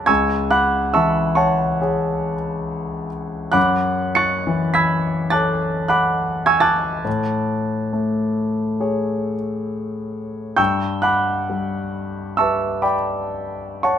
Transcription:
Already playing: G#4 C#5 G#5 A5 B5 C#6 D6 E6 F#6 G#6 A6 B6
0.06 C#2 G#5 C#6 E6 G#6
0.51 F#5 B5 D6 F#6
0.94 E3 E5 A5 C#6 E6
1.35 C#5 F#5 A5 C#6
1.81 G#4 C#5
3.52 F#2 F#5 B5 D6 F#6
4.15 C#6 F#6 A6 C#7
4.47 E3
4.74 B5 E6 G#6 B6
5.30 A4 C#5 A5 D6 F#6 A6
5.88 F#5 B5 D6 F#6
6.46 G#5 C#6 E6 G#6
6.60 A5 D6 F#6 A6
7.05 A2
7.93 A3
8.80 G#4 C#5
10.56 G2 G5 C#6 E6 G6
11.02 F#5 B5 D6 F#6
11.50 G3
12.37 G4 B4 E5 A5 C#6 E6
12.82 D5 G5 B5 D6
13.83 C#5 F#5 A5 C#6

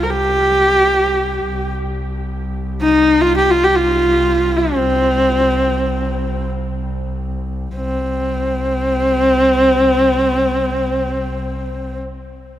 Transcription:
Already playing: C2
0.03 A#4
0.11 G4
1.47 C2
2.82 D#4
3.21 F4
3.38 G4
3.50 F4
3.64 G4
3.76 F4
4.57 C4
7.76 C2 C4

